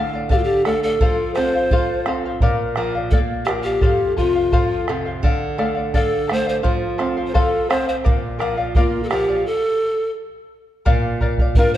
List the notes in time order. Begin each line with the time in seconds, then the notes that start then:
Already playing: D3 A3 A4 D5 F5
0.13 D5 F5
0.29 D4 G4 A4 D5 F5, bombo low
0.38 F4
0.44 G4
0.65 A3 A4 D5 F5, bombo rim
0.83 A4 D5 F5
1.00 F3 A4 C5 F5, bombo low
1.34 C4 A4 C5 F5, bombo rim
1.55 C5 F5
1.71 F4 A4 C5 F5, bombo low
2.06 C4 A4 C5 F5, bombo rim
2.26 C5 F5
2.41 A#2 A#4 D5 F5, bombo low
2.76 F3 A#4 D5 F5, bombo rim
2.95 D5 F5
3.11 A#3 A4 D5 F5, bombo low
3.45 F3 G4 A#4 D5, bombo rim
3.49 F5
3.63 G4 D5 F5
3.81 F2 A4 C5 F5, bombo low
4.17 C3 F4 A4 C5 F5, bombo low
4.35 C5 F5
4.52 F3 A4 C5 F5, bombo low
4.88 C3 A4 C5 F5, bombo rim
5.06 C5 F5
5.23 D3 A4 D5 F5, bombo low
5.58 A3 A4 D5 F5, bombo rim
5.75 D5 F5
5.94 D4 A4 D5 F5, bombo low
6.28 A3 A4 D5 F5, bombo rim
6.32 C5
6.46 C5 D5 F5
6.63 F3 A4 C5 F5, bombo low
6.98 C4 A4 C5 F5, bombo rim
7.17 C5 F5
7.27 C5
7.34 F3 A4 C5 F5, bombo low
7.69 C4 A4 C5 F5, bombo rim
7.88 C5 F5
8.04 A#2 A#4 D5 F5, bombo low
8.39 F3 A#4 D5 F5, bombo rim
8.57 D5 F5
8.75 A#3 F4 A#4 D5 F5, bombo low
9.03 A4
9.09 F3 G4 A#4 D5 F5, bombo rim
9.28 D5 F5
9.46 A4
10.85 A#2 A#4 D5 F5, bombo low
11.21 A#4 D5 F5, bombo low
11.38 D5 F5, bombo low
11.55 A#3 D4 F4 A#4 D5 F5, bombo low
11.74 C5